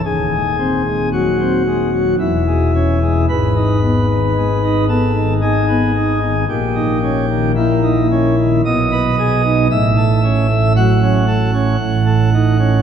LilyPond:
<<
  \new Staff \with { instrumentName = "Pipe organ" } { \time 3/4 \key gis \phrygian \tempo 4 = 56 gis'4 fis'4 e'4 | b'4. a'8 gis'4 | g'4 e'4 dis''4 | e''4 fis''2 | }
  \new Staff \with { instrumentName = "Pipe organ" } { \clef bass \time 3/4 \key gis \phrygian << { dis,16 gis16 bis16 gis16 fis16 bis16 gis16 fis16 e,16 gis16 cis'16 gis16 | gis,16 dis'16 b16 dis16 gis16 dis'16 b16 dis16 dis'16 b16 dis'16 dis16 | ais,16 dis'16 cis'16 dis16 ais16 dis'16 cis'16 dis16 b,16 b'16 gis'16 dis'16 | a,16 a'16 cis'16 a16 fis16 cis'16 a'16 cis'16 a,16 a'16 dis'16 cis'16 | } \\ { dis,,2 e,,4 | gis,,2. | ais,,2 b,,4 | a,,2 a,,4 | } >> }
>>